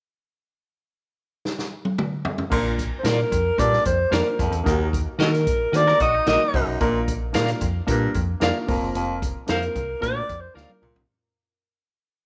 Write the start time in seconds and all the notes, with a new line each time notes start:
1.45 snare
1.59 snare
1.85 high tom
1.98 mid tom
2.25 floor tom
2.38 floor tom
2.50 A#1 A#2 A#3 D4 F4 A#4, kick, crash
2.79 kick, closed hi-hat
2.99 C5
3.03 A#2 A#3 D4 F4 A#4 D5, snare, closed hi-hat
3.32 F2, kick, closed hi-hat
3.58 G2 A#2 A#3 D4 F4 A#4 D5, kick, closed hi-hat
3.73 snare
3.85 F2 C5, kick, closed hi-hat
4.11 F2 A#3 D4 F4 A#4 D5, snare, closed hi-hat
4.39 F2, kick, closed hi-hat
4.52 E2, closed hi-hat
4.64 D#2 A#3 D#4 F#4 A#4, kick, closed hi-hat
4.93 kick, closed hi-hat
5.18 D#3 A#3 D#4 F#4 A#4 D#5, snare, closed hi-hat
5.23 A#4
5.35 snare, closed hi-hat
5.47 A#1, kick, closed hi-hat
5.72 D2 D#3 A#3 D#4 F#4 A#4, closed hi-hat
5.76 D5
5.87 A#4, snare
6.00 A#1 F#4 D#5, kick, closed hi-hat
6.14 D#4
6.26 A#1 A#3 D#4 F#4 A#4 D#5, snare, closed hi-hat
6.53 C2 F#2, kick, open hi-hat
6.67 B1
6.80 A#1 A#2 A#3 D4 F4 A#4, kick, closed hi-hat
7.08 kick, closed hi-hat
7.33 A#2 A#3 D4 F4 A#4 D5 F5, snare, closed hi-hat
7.48 snare, closed hi-hat
7.61 F2, kick, closed hi-hat
7.87 G2 A#2 A#3 D4 F4 A#4, kick, closed hi-hat
8.14 F2, kick, closed hi-hat
8.40 F2 A#3 D4 F4 A#4 D5 F5, snare, closed hi-hat
8.67 F1 F2 A#3 C4 F4 A#4, kick, open hi-hat
8.82 F#1
8.95 F1 F2, closed hi-hat
9.22 kick, closed hi-hat
9.47 F2 A#3 C4 F4 A#4 C5 F5, snare, closed hi-hat
9.51 A#4
9.62 closed hi-hat
9.75 C2, kick, closed hi-hat
10.01 D2 A#2 A#3 D4 F4 A#4 D5, kick, closed hi-hat
10.29 F2, kick, closed hi-hat
10.41 C5
10.54 D2 A#3 D4 F4 A#4 D5 F5, snare
10.69 high tom
10.82 C2 A#2, mid tom
10.96 B1, floor tom